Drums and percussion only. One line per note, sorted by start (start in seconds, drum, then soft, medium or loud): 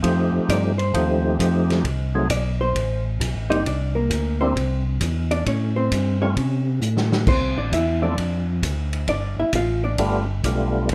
0.03 kick soft
0.03 ride medium
0.49 kick soft
0.49 hi-hat pedal medium
0.49 ride medium
0.79 ride soft
0.94 kick soft
0.94 ride medium
1.39 kick soft
1.39 hi-hat pedal medium
1.39 ride medium
1.70 snare soft
1.70 ride soft
1.84 kick soft
1.84 ride medium
2.30 kick soft
2.30 hi-hat pedal medium
2.30 ride medium
2.75 kick soft
2.75 ride medium
3.20 kick soft
3.20 hi-hat pedal medium
3.20 ride medium
3.52 ride soft
3.65 kick soft
3.65 ride medium
4.10 kick soft
4.10 hi-hat pedal medium
4.10 ride medium
4.56 kick soft
4.56 ride medium
5.01 kick soft
5.01 hi-hat pedal medium
5.01 ride medium
5.31 ride soft
5.46 kick soft
5.46 ride medium
5.92 kick soft
5.92 hi-hat pedal medium
5.92 ride medium
6.37 kick soft
6.37 ride medium
6.81 hi-hat pedal medium
6.97 snare medium
7.12 snare medium
7.27 kick medium
7.27 crash medium
7.72 kick soft
7.72 hi-hat pedal medium
7.72 ride medium
8.18 kick soft
8.18 ride medium
8.63 kick soft
8.63 hi-hat pedal medium
8.63 ride medium
8.93 ride soft
9.08 kick soft
9.08 ride medium
9.53 kick soft
9.53 hi-hat pedal medium
9.53 ride medium
9.98 kick soft
9.98 ride medium
10.44 kick soft
10.44 hi-hat pedal medium
10.44 ride medium
10.89 kick soft
10.89 ride medium